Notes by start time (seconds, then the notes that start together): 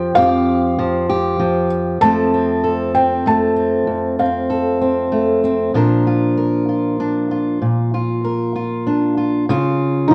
Already playing: F2 F3 G4 G5
0.15 F2 G4 F5
0.79 F3
1.09 G4
1.39 F3
2.01 F2 F3 A3 C4 A4 A5
2.34 C4
2.64 A4
2.95 C4 G5
3.26 A3 A5
3.56 C4
3.87 F2
4.19 C4 F5
4.50 A4
4.81 C4
5.12 A3
5.44 C4
5.74 A#2 F3 D4 F4 A#4
6.07 F4
6.37 A#4
6.69 F4
7.00 D4
7.31 F4
7.62 A#2
7.94 F4
8.24 A#4
8.56 F4
8.87 D4
9.17 F4
9.49 C#3 F4
10.08 F3 D#4